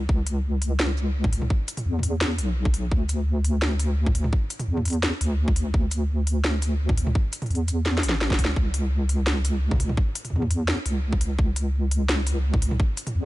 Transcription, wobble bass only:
0.09 1.49 C#2 loud
1.86 2.40 E2 medium
2.38 2.90 B1 loud
2.91 4.32 D2 loud
4.68 5.11 E2 loud
5.21 5.73 D2 medium
5.74 7.14 D2 loud
7.50 8.04 E2 loud
8.03 8.40 A1 loud
8.39 8.55 D2 medium
8.56 9.96 C#2 loud
10.33 10.76 E2 loud
10.86 11.38 C#2 medium
11.38 12.79 C#2 loud
13.15 13.25 E2 medium

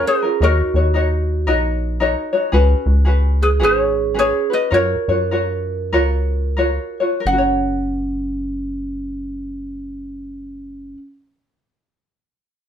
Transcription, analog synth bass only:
0.41 0.62 D#2 loud
0.74 1.48 D#2 medium
1.47 2.16 A#1 loud
2.53 2.75 C#2 loud
2.86 3.62 C#2 medium
3.60 4.33 G#1 medium
4.72 4.96 F#2 loud
5.08 5.94 F#2 medium
5.92 6.79 C#2 loud
7.26 10.96 F#1 medium

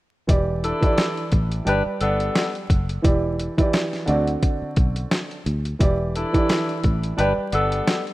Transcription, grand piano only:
0.27 0.77 E3 medium
0.27 0.78 E4 medium
0.27 0.78 G4 medium
0.27 0.79 D5 medium
0.81 1.66 E3 medium
0.81 1.66 E4 medium
0.81 1.64 G4 medium
0.81 1.66 D5 loud
1.65 2.62 G3 medium
1.65 2.62 G4 medium
1.65 2.63 B4 medium
1.65 2.63 D5 medium
3.02 3.53 E3 medium
3.02 3.53 E4 medium
3.02 3.54 G4 medium
3.02 3.54 D5 medium
3.57 4.07 E3 medium
3.57 4.08 E4 medium
3.57 4.08 G4 medium
3.57 4.07 D5 loud
4.06 5.35 D3 medium
4.06 5.36 C4 medium
4.06 5.36 F#4 medium
4.06 5.37 D5 loud
5.79 6.29 E3 medium
5.79 6.30 E4 medium
5.79 6.30 G4 medium
5.79 6.31 D5 loud
6.33 7.17 E3 medium
6.33 7.18 E4 medium
6.33 7.16 G4 medium
6.33 7.18 D5 medium
7.17 8.13 G3 medium
7.17 8.13 G4 medium
7.17 8.13 B4 medium
7.17 8.13 D5 loud

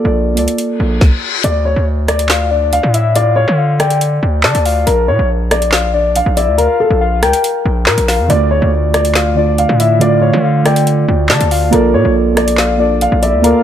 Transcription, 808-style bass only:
0.05 0.39 A#1 loud
0.37 0.47 C#2 loud
0.80 1.00 A#1 loud
1.44 1.75 D2 loud
1.76 2.79 D2 loud
2.83 3.45 A2 loud
3.48 4.20 D3 loud
4.23 4.46 D2 loud
4.44 4.54 D3 loud
4.55 4.86 D2 loud
4.87 5.10 A#1 loud
5.08 5.19 A#2 loud
5.19 6.22 A#1 loud
6.26 6.49 A#1 loud
6.48 6.68 D2 loud
6.90 7.24 A#1 loud
7.23 7.33 C#2 loud
7.65 7.88 A#1 loud
7.87 7.97 A#2 loud
7.98 8.21 A#1 loud
8.19 8.29 F2 loud
8.30 8.61 D2 loud
8.62 9.65 D2 loud
9.69 10.31 A2 loud
10.33 11.05 D3 loud
11.08 11.31 D2 loud
11.30 11.40 D3 loud
11.41 11.71 D2 loud
11.73 11.96 A#1 loud
11.94 12.04 A#2 loud
12.05 13.08 A#1 loud
13.12 13.35 A#1 loud
13.33 13.54 D2 loud

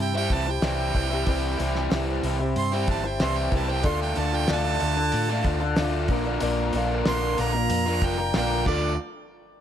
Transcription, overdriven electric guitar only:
0.00 0.14 C3 medium
0.14 0.30 G3 medium
0.14 0.31 C4 medium
0.14 0.32 E4 medium
0.30 0.47 E3 medium
0.30 0.47 G3 medium
0.30 0.47 C4 medium
0.30 0.46 E4 medium
0.47 muted overdriven electric guitar stroke soft
0.62 1.24 C3 medium
0.62 0.93 E3 medium
0.62 0.94 G3 loud
0.62 0.95 C4 loud
0.62 0.96 E4 medium
0.94 1.25 E3 medium
0.94 1.12 G3 medium
0.94 1.10 C4 medium
0.94 1.09 E4 medium
1.10 1.26 G3 medium
1.10 1.27 C4 medium
1.10 1.27 E4 medium
1.25 1.89 C3 medium
1.25 1.57 E3 medium
1.25 1.58 G3 medium
1.25 1.59 C4 medium
1.25 1.60 E4 loud
1.58 1.90 E3 medium
1.58 1.76 G3 medium
1.58 1.75 C4 medium
1.58 1.73 E4 medium
1.74 1.91 G3 medium
1.74 1.92 C4 medium
1.74 1.92 E4 medium
1.90 2.72 C3 loud
1.90 2.39 E3 medium
1.90 2.39 G3 loud
1.90 2.39 C4 medium
1.90 2.38 E4 loud
2.40 muted overdriven electric guitar stroke medium
2.72 2.88 G3 medium
2.72 2.89 C4 medium
2.72 2.90 E4 medium
2.88 3.04 E3 medium
2.88 3.03 G3 medium
2.88 3.03 C4 medium
2.88 3.02 E4 medium
3.04 muted overdriven electric guitar stroke soft
3.20 3.83 C3 loud
3.20 3.51 E3 medium
3.20 3.52 G3 loud
3.20 3.54 C4 medium
3.20 3.54 E4 loud
3.52 3.83 E3 medium
3.52 3.71 G3 medium
3.52 3.69 C4 medium
3.52 3.68 E4 medium
3.69 3.85 G3 medium
3.69 3.84 C4 medium
3.69 3.83 E4 medium
3.84 4.15 D3 medium
3.84 4.16 A3 medium
3.84 4.18 D4 loud
3.84 4.19 F4 loud
4.17 4.47 D3 medium
4.17 4.35 A3 medium
4.17 4.34 D4 medium
4.17 4.32 F4 medium
4.32 4.48 A3 medium
4.32 4.50 D4 medium
4.32 4.51 F4 medium
4.48 5.29 D3 loud
4.48 4.97 A3 medium
4.48 4.97 D4 loud
4.48 4.97 F4 loud
4.97 muted overdriven electric guitar stroke medium
5.29 5.45 A3 medium
5.29 5.47 D4 medium
5.29 5.48 F4 medium
5.45 5.76 D3 medium
5.45 5.62 A3 medium
5.45 5.62 D4 medium
5.45 5.61 F4 medium
5.62 muted overdriven electric guitar stroke soft
5.77 6.08 D3 medium
5.77 6.08 A3 loud
5.77 6.11 D4 loud
5.77 6.12 F4 loud
6.09 6.40 A#2 medium
6.09 6.41 D3 medium
6.09 6.28 A#3 loud
6.09 6.26 D4 medium
6.09 6.25 F4 medium
6.26 6.42 A#3 medium
6.26 6.43 D4 medium
6.26 6.44 F4 medium
6.41 7.05 A#2 medium
6.41 6.73 D3 medium
6.41 6.74 A#3 loud
6.41 6.75 D4 loud
6.41 6.76 F4 loud
6.74 7.06 D3 medium
6.74 6.93 A#3 medium
6.74 6.91 D4 medium
6.74 6.90 F4 medium
6.91 7.07 A#3 medium
6.91 7.07 D4 medium
6.91 7.08 F4 medium
7.06 7.86 A#2 loud
7.06 7.54 D3 loud
7.06 7.53 A#3 loud
7.06 7.54 D4 loud
7.06 7.53 F4 medium
7.54 muted overdriven electric guitar stroke medium
7.86 8.02 A#3 medium
7.86 8.03 D4 medium
7.86 8.04 F4 medium
8.02 8.19 D3 medium
8.02 8.19 A#3 medium
8.02 8.19 D4 medium
8.02 8.19 F4 medium
8.20 muted overdriven electric guitar stroke soft
8.34 8.66 A#2 loud
8.34 8.65 D3 loud
8.34 8.67 A#3 loud
8.34 8.66 D4 loud
8.34 8.67 F4 loud
8.66 8.92 D3 medium
8.66 8.92 A3 medium
8.66 8.92 D4 medium
8.66 8.93 F4 loud

